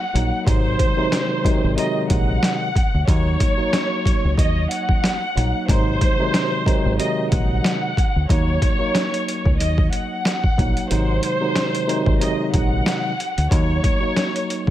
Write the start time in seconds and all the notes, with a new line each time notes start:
Already playing: F#5
0.13 A#1 F#3 A#3 D#4, closed hi-hat
0.47 G#1 C3 D#3 F#3 G#3 D#4 C5, kick, closed hi-hat
0.79 kick, closed hi-hat
0.96 C3 D#3 F#3 G#3 D#4
1.12 snare, closed hi-hat
1.43 C3 D#3 F#3 G#3 D#4, kick, closed hi-hat
1.64 G#1
1.76 C3 D#3 F#3 G#3 D#4 D#5, closed hi-hat
2.10 A#1 F#5, kick, closed hi-hat
2.43 snare, closed hi-hat
2.76 kick, closed hi-hat
2.94 D2
3.07 D#2 F#3 A#3 D#4 C#5, kick, closed hi-hat
3.40 kick, closed hi-hat
3.57 F#3 A#3 D#4
3.73 snare, closed hi-hat
4.06 kick, closed hi-hat
4.25 C#2
4.38 D#2 D#5, kick, closed hi-hat
4.71 F#5, closed hi-hat
4.89 kick
5.04 snare, closed hi-hat
5.35 A#1 F#3 A#3 D#4, closed hi-hat
5.68 G#1 C3 D#3 F#3 G#3 D#4 C5, kick, closed hi-hat
6.01 kick, closed hi-hat
6.18 C3 D#3 F#3 G#3 D#4
6.34 snare, closed hi-hat
6.65 C3 D#3 F#3 G#3 D#4, kick, closed hi-hat
6.86 G#1
6.98 C3 D#3 F#3 G#3 D#4 D#5, closed hi-hat
7.31 A#1 F#5, kick, closed hi-hat
7.64 snare, closed hi-hat
7.97 kick, closed hi-hat
8.16 D2
8.29 D#2 F#3 A#3 D#4 C#5, kick, closed hi-hat
8.62 kick, closed hi-hat
8.79 F#3 A#3 D#4
8.95 snare, closed hi-hat
9.14 closed hi-hat
9.28 closed hi-hat
9.45 C#2, kick
9.60 D#2 D#5, closed hi-hat
9.78 kick
9.92 F#5, closed hi-hat
10.25 snare, closed hi-hat
10.44 kick
10.57 A#1 F#3 A#3 D#4, kick, closed hi-hat
10.77 closed hi-hat
10.90 G#1 C3 D#3 F#3 G#3 D#4 C5, closed hi-hat
11.23 closed hi-hat
11.40 C3 D#3 F#3 G#3 D#4
11.56 snare, closed hi-hat
11.75 closed hi-hat
11.87 C3 D#3 F#3 G#3 D#4, closed hi-hat
12.06 G#1, kick
12.20 C3 D#3 F#3 G#3 D#4 D#5, closed hi-hat
12.53 A#1 F#5, kick, closed hi-hat
12.86 snare, closed hi-hat
13.20 closed hi-hat
13.38 D2, closed hi-hat
13.51 D#2 F#3 A#3 D#4 C#5, kick, closed hi-hat
13.84 kick, closed hi-hat
14.01 F#3 A#3 D#4
14.17 snare, closed hi-hat
14.36 closed hi-hat
14.50 closed hi-hat
14.67 kick